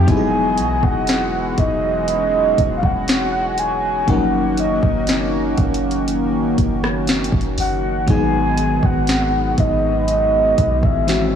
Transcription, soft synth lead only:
0, 0, Header, 1, 2, 480
1, 0, Start_track
1, 0, Key_signature, 5, "minor"
1, 0, Tempo, 1000000
1, 37, Time_signature, 4, 2, 24, 8
1, 5450, End_track
2, 0, Start_track
2, 0, Title_t, "Soft synth lead"
2, 0, Program_c, 0, 80
2, 0, Note_on_c, 0, 79, 114
2, 46, Note_on_c, 0, 80, 114
2, 54, Note_off_c, 0, 79, 0
2, 404, Note_on_c, 0, 78, 107
2, 412, Note_off_c, 0, 80, 0
2, 764, Note_on_c, 0, 75, 102
2, 771, Note_off_c, 0, 78, 0
2, 1001, Note_off_c, 0, 75, 0
2, 1004, Note_on_c, 0, 75, 102
2, 1308, Note_off_c, 0, 75, 0
2, 1332, Note_on_c, 0, 77, 70
2, 1365, Note_on_c, 0, 78, 111
2, 1372, Note_off_c, 0, 77, 0
2, 1725, Note_on_c, 0, 80, 106
2, 1732, Note_off_c, 0, 78, 0
2, 1967, Note_on_c, 0, 78, 97
2, 1974, Note_off_c, 0, 80, 0
2, 2207, Note_on_c, 0, 75, 92
2, 2214, Note_off_c, 0, 78, 0
2, 2682, Note_off_c, 0, 75, 0
2, 3646, Note_on_c, 0, 78, 113
2, 3865, Note_off_c, 0, 78, 0
2, 3888, Note_on_c, 0, 80, 121
2, 4249, Note_on_c, 0, 78, 113
2, 4257, Note_off_c, 0, 80, 0
2, 4607, Note_on_c, 0, 75, 101
2, 4614, Note_off_c, 0, 78, 0
2, 4842, Note_off_c, 0, 75, 0
2, 4848, Note_on_c, 0, 75, 106
2, 5207, Note_on_c, 0, 76, 102
2, 5215, Note_off_c, 0, 75, 0
2, 5450, Note_off_c, 0, 76, 0
2, 5450, End_track
0, 0, End_of_file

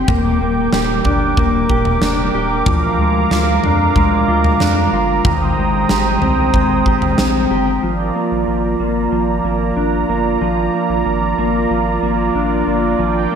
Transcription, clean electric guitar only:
0, 0, Header, 1, 2, 480
1, 0, Start_track
1, 0, Tempo, 645161
1, 62, Time_signature, 4, 2, 24, 8
1, 9935, End_track
2, 0, Start_track
2, 0, Title_t, "Clean electric guitar"
2, 0, Program_c, 0, 27
2, 0, Note_on_c, 0, 63, 52
2, 0, Note_on_c, 0, 67, 61
2, 62, Note_on_c, 0, 58, 78
2, 301, Note_off_c, 0, 58, 0
2, 304, Note_on_c, 0, 58, 59
2, 541, Note_off_c, 0, 67, 0
2, 544, Note_on_c, 0, 67, 60
2, 780, Note_off_c, 0, 63, 0
2, 783, Note_on_c, 0, 62, 64
2, 1021, Note_off_c, 0, 58, 0
2, 1024, Note_on_c, 0, 58, 73
2, 1255, Note_off_c, 0, 67, 0
2, 1264, Note_on_c, 0, 67, 62
2, 1501, Note_off_c, 0, 62, 0
2, 1504, Note_on_c, 0, 62, 52
2, 1736, Note_off_c, 0, 67, 0
2, 1745, Note_on_c, 0, 67, 61
2, 1984, Note_on_c, 0, 53, 78
2, 2032, Note_off_c, 0, 67, 0
2, 2223, Note_off_c, 0, 58, 0
2, 2226, Note_on_c, 0, 56, 60
2, 2248, Note_off_c, 0, 62, 0
2, 2465, Note_on_c, 0, 65, 58
2, 2705, Note_on_c, 0, 62, 63
2, 2942, Note_off_c, 0, 56, 0
2, 2945, Note_on_c, 0, 56, 75
2, 3176, Note_off_c, 0, 65, 0
2, 3184, Note_on_c, 0, 65, 59
2, 3417, Note_off_c, 0, 62, 0
2, 3426, Note_on_c, 0, 62, 54
2, 3661, Note_off_c, 0, 65, 0
2, 3670, Note_on_c, 0, 65, 62
2, 3903, Note_off_c, 0, 53, 0
2, 3909, Note_on_c, 0, 51, 78
2, 3952, Note_off_c, 0, 62, 0
2, 3954, Note_off_c, 0, 65, 0
2, 4145, Note_off_c, 0, 56, 0
2, 4148, Note_on_c, 0, 56, 57
2, 4387, Note_on_c, 0, 67, 58
2, 4627, Note_on_c, 0, 60, 60
2, 4860, Note_off_c, 0, 56, 0
2, 4869, Note_on_c, 0, 56, 67
2, 5100, Note_off_c, 0, 67, 0
2, 5109, Note_on_c, 0, 67, 56
2, 5342, Note_off_c, 0, 60, 0
2, 5351, Note_on_c, 0, 60, 52
2, 5576, Note_off_c, 0, 67, 0
2, 5585, Note_on_c, 0, 67, 57
2, 5820, Note_off_c, 0, 51, 0
2, 5823, Note_on_c, 0, 53, 80
2, 5872, Note_off_c, 0, 67, 0
2, 5873, Note_off_c, 0, 56, 0
2, 5875, Note_off_c, 0, 60, 0
2, 6065, Note_on_c, 0, 58, 60
2, 6302, Note_off_c, 0, 53, 0
2, 6305, Note_on_c, 0, 53, 51
2, 6543, Note_off_c, 0, 58, 0
2, 6546, Note_on_c, 0, 58, 62
2, 6782, Note_off_c, 0, 53, 0
2, 6785, Note_on_c, 0, 53, 63
2, 7023, Note_off_c, 0, 58, 0
2, 7026, Note_on_c, 0, 58, 54
2, 7265, Note_on_c, 0, 62, 63
2, 7506, Note_off_c, 0, 58, 0
2, 7509, Note_on_c, 0, 58, 59
2, 7746, Note_off_c, 0, 53, 0
2, 7749, Note_on_c, 0, 53, 86
2, 7984, Note_off_c, 0, 58, 0
2, 7987, Note_on_c, 0, 58, 61
2, 8223, Note_off_c, 0, 53, 0
2, 8226, Note_on_c, 0, 53, 54
2, 8466, Note_off_c, 0, 58, 0
2, 8469, Note_on_c, 0, 58, 63
2, 8705, Note_off_c, 0, 53, 0
2, 8708, Note_on_c, 0, 53, 69
2, 8945, Note_off_c, 0, 58, 0
2, 8948, Note_on_c, 0, 58, 59
2, 9184, Note_off_c, 0, 62, 0
2, 9187, Note_on_c, 0, 62, 62
2, 9427, Note_off_c, 0, 58, 0
2, 9430, Note_on_c, 0, 58, 58
2, 9662, Note_off_c, 0, 53, 0
2, 9665, Note_on_c, 0, 53, 78
2, 9904, Note_off_c, 0, 58, 0
2, 9907, Note_on_c, 0, 58, 61
2, 9935, Note_off_c, 0, 53, 0
2, 9935, Note_off_c, 0, 58, 0
2, 9935, Note_off_c, 0, 62, 0
2, 9935, End_track
0, 0, End_of_file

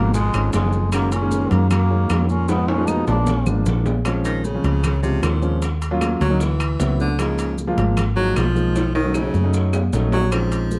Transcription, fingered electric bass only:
0, 0, Header, 1, 2, 480
1, 0, Start_track
1, 0, Tempo, 391389
1, 1138, Time_signature, 4, 2, 24, 8
1, 13235, End_track
2, 0, Start_track
2, 0, Title_t, "Fingered electric bass"
2, 0, Program_c, 0, 33
2, 0, Note_on_c, 0, 32, 93
2, 384, Note_off_c, 0, 32, 0
2, 417, Note_on_c, 0, 32, 76
2, 641, Note_off_c, 0, 32, 0
2, 658, Note_on_c, 0, 30, 92
2, 1783, Note_off_c, 0, 30, 0
2, 1857, Note_on_c, 0, 42, 101
2, 2527, Note_off_c, 0, 42, 0
2, 2574, Note_on_c, 0, 41, 84
2, 3700, Note_off_c, 0, 41, 0
2, 3772, Note_on_c, 0, 34, 89
2, 4219, Note_off_c, 0, 34, 0
2, 4251, Note_on_c, 0, 32, 75
2, 4475, Note_off_c, 0, 32, 0
2, 4491, Note_on_c, 0, 34, 84
2, 5619, Note_off_c, 0, 34, 0
2, 5691, Note_on_c, 0, 37, 90
2, 6363, Note_off_c, 0, 37, 0
2, 6411, Note_on_c, 0, 39, 82
2, 7539, Note_off_c, 0, 39, 0
2, 7612, Note_on_c, 0, 38, 96
2, 8284, Note_off_c, 0, 38, 0
2, 8337, Note_on_c, 0, 37, 88
2, 9463, Note_off_c, 0, 37, 0
2, 9536, Note_on_c, 0, 32, 92
2, 10207, Note_off_c, 0, 32, 0
2, 10260, Note_on_c, 0, 35, 83
2, 11386, Note_off_c, 0, 35, 0
2, 11456, Note_on_c, 0, 42, 87
2, 12128, Note_off_c, 0, 42, 0
2, 12179, Note_on_c, 0, 34, 84
2, 13235, Note_off_c, 0, 34, 0
2, 13235, End_track
0, 0, End_of_file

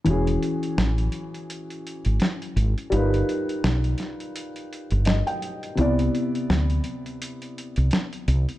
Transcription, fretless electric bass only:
0, 0, Header, 1, 2, 480
1, 0, Start_track
1, 0, Tempo, 714286
1, 39, Time_signature, 4, 2, 24, 8
1, 5768, End_track
2, 0, Start_track
2, 0, Title_t, "Fretless electric bass"
2, 0, Program_c, 0, 35
2, 42, Note_on_c, 0, 28, 93
2, 243, Note_off_c, 0, 28, 0
2, 524, Note_on_c, 0, 33, 74
2, 724, Note_off_c, 0, 33, 0
2, 1383, Note_on_c, 0, 32, 78
2, 1466, Note_off_c, 0, 32, 0
2, 1722, Note_on_c, 0, 32, 89
2, 1838, Note_off_c, 0, 32, 0
2, 1963, Note_on_c, 0, 31, 103
2, 2163, Note_off_c, 0, 31, 0
2, 2445, Note_on_c, 0, 35, 77
2, 2645, Note_off_c, 0, 35, 0
2, 3304, Note_on_c, 0, 31, 84
2, 3504, Note_off_c, 0, 31, 0
2, 3886, Note_on_c, 0, 36, 109
2, 4085, Note_off_c, 0, 36, 0
2, 4366, Note_on_c, 0, 38, 80
2, 4565, Note_off_c, 0, 38, 0
2, 5225, Note_on_c, 0, 36, 80
2, 5307, Note_off_c, 0, 36, 0
2, 5563, Note_on_c, 0, 36, 89
2, 5679, Note_off_c, 0, 36, 0
2, 5768, End_track
0, 0, End_of_file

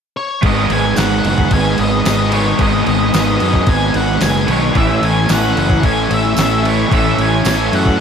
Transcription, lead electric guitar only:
0, 0, Header, 1, 2, 480
1, 0, Start_track
1, 0, Tempo, 540054
1, 380, Time_signature, 4, 2, 24, 8
1, 7113, End_track
2, 0, Start_track
2, 0, Title_t, "Lead electric guitar"
2, 0, Program_c, 0, 29
2, 150, Note_on_c, 0, 73, 80
2, 392, Note_off_c, 0, 73, 0
2, 406, Note_on_c, 0, 75, 100
2, 637, Note_on_c, 0, 80, 106
2, 640, Note_off_c, 0, 75, 0
2, 863, Note_off_c, 0, 80, 0
2, 867, Note_on_c, 0, 78, 96
2, 1111, Note_off_c, 0, 78, 0
2, 1124, Note_on_c, 0, 78, 104
2, 1336, Note_off_c, 0, 78, 0
2, 1367, Note_on_c, 0, 80, 112
2, 1599, Note_on_c, 0, 75, 105
2, 1601, Note_off_c, 0, 80, 0
2, 1822, Note_off_c, 0, 75, 0
2, 1833, Note_on_c, 0, 75, 88
2, 2072, Note_off_c, 0, 75, 0
2, 2076, Note_on_c, 0, 73, 73
2, 2316, Note_off_c, 0, 73, 0
2, 2323, Note_on_c, 0, 75, 102
2, 2552, Note_off_c, 0, 75, 0
2, 2563, Note_on_c, 0, 75, 94
2, 2799, Note_off_c, 0, 75, 0
2, 2813, Note_on_c, 0, 75, 102
2, 3282, Note_on_c, 0, 80, 122
2, 3291, Note_off_c, 0, 75, 0
2, 3519, Note_off_c, 0, 80, 0
2, 3524, Note_on_c, 0, 78, 97
2, 3756, Note_off_c, 0, 78, 0
2, 3759, Note_on_c, 0, 80, 94
2, 3998, Note_off_c, 0, 80, 0
2, 4009, Note_on_c, 0, 73, 79
2, 4240, Note_off_c, 0, 73, 0
2, 4244, Note_on_c, 0, 76, 99
2, 4480, Note_off_c, 0, 76, 0
2, 4484, Note_on_c, 0, 80, 96
2, 4720, Note_off_c, 0, 80, 0
2, 4731, Note_on_c, 0, 78, 106
2, 4941, Note_off_c, 0, 78, 0
2, 4969, Note_on_c, 0, 78, 102
2, 5202, Note_off_c, 0, 78, 0
2, 5205, Note_on_c, 0, 80, 99
2, 5441, Note_off_c, 0, 80, 0
2, 5454, Note_on_c, 0, 76, 102
2, 5685, Note_off_c, 0, 76, 0
2, 5703, Note_on_c, 0, 76, 88
2, 5929, Note_off_c, 0, 76, 0
2, 5933, Note_on_c, 0, 73, 87
2, 6164, Note_off_c, 0, 73, 0
2, 6176, Note_on_c, 0, 76, 97
2, 6405, Note_off_c, 0, 76, 0
2, 6412, Note_on_c, 0, 80, 109
2, 6888, Note_off_c, 0, 80, 0
2, 6892, Note_on_c, 0, 78, 90
2, 7113, Note_off_c, 0, 78, 0
2, 7113, End_track
0, 0, End_of_file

